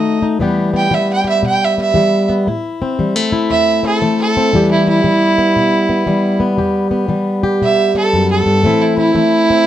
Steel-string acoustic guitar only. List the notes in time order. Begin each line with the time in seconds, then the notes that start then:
Already playing: D#3 A3 D#4 F#4
0.22 D#4
0.39 E2 E3 G3 B3 G4
0.74 B3
0.91 E3 G3
1.24 G4
1.43 B2
1.78 B3
1.94 E3 G3
2.29 B3
2.47 A2 E4
2.82 C4
2.99 E3 G3
3.16 A3
3.32 E4
3.50 E2
3.83 C4
4.02 E3 A3
4.37 C4
4.53 E2 E3 G3 B3 G4
4.88 B3
5.04 E3 G3
5.38 B3
5.56 B2
5.89 B3
6.07 E3 G3
6.40 B3
6.58 E2 G4
6.91 B3
7.08 E3 G3
7.43 G4
7.62 B2
7.95 B3
8.13 F#2
8.46 G2
8.63 A2 E3 A3 C4 E4
8.98 C4
9.15 E3 A3
9.50 C4